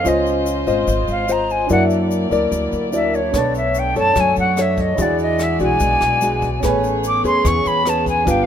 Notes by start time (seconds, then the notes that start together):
Already playing: D#5
0.03 C#2 C#4 F4 C5, shaker
0.07 D#5
0.26 shaker
0.46 shaker
0.67 G#1 F4 C5 D#5, shaker
0.87 G#1 G#3, shaker
1.08 G#1 F5, shaker
1.29 F4 C5 D#5 A#5, shaker
1.50 G#5, shaker
1.67 F#2 F#3 A#3 D4 E4 F#4 D5, shaker
1.71 A#4 D5 E5 F#5
1.90 shaker
2.11 shaker
2.31 D2 E4 A#4 D5, shaker
2.51 D2 F#3, shaker
2.72 D2, shaker
2.92 D4 E4 F#4 A#4 D5 E5, shaker
3.14 C#5, shaker
3.31 B1 A3 B3 D4 A4 B4 C#5, kick, cross-stick, closed hi-hat, shaker
3.35 D4 C#5 D5 A5
3.55 E5, closed hi-hat, shaker
3.75 closed hi-hat, shaker
3.79 G5
3.96 F#2 D4 A4 C#5 A5, closed hi-hat, shaker
4.16 F#2 F#3, kick, cross-stick, closed hi-hat, shaker
4.20 G#5
4.36 F#2 F#5, closed hi-hat, shaker
4.57 D4 A4 C#5, cross-stick, closed hi-hat, shaker
4.62 E5
4.77 D#5, kick, closed hi-hat, shaker
4.96 E2 E3 G#3 D4 E4 F#4 G#4 D5, kick, closed hi-hat, shaker
5.02 D5 F#5
5.19 D#5, closed hi-hat, shaker
5.39 cross-stick, closed hi-hat, shaker
5.43 E5
5.59 B1 G#3 D4 F#4 G#5, closed hi-hat, shaker
5.80 B1 B2, kick, closed hi-hat, shaker
6.01 B1, cross-stick, closed hi-hat, shaker
6.21 G#3 D4 F#4, closed hi-hat, shaker
6.42 kick, closed hi-hat, shaker
6.60 A1 A3 B3 C#4 G#4 C#5, kick, cross-stick, closed hi-hat, shaker
6.64 B4 G#5
6.84 closed hi-hat, shaker
7.04 D6, closed hi-hat, shaker
7.24 E2 C#4 G#4 B4 C6, closed hi-hat, shaker
7.45 E2 E3 C#6, kick, cross-stick, closed hi-hat, shaker
7.66 E2 B5, closed hi-hat, shaker
7.86 C#4 G#4 B4 A5, cross-stick, closed hi-hat, shaker
8.06 G#5, kick, closed hi-hat, shaker
8.25 G1 G3 D4 F4 G4 B4 F5, kick, closed hi-hat, shaker
8.30 F5 G5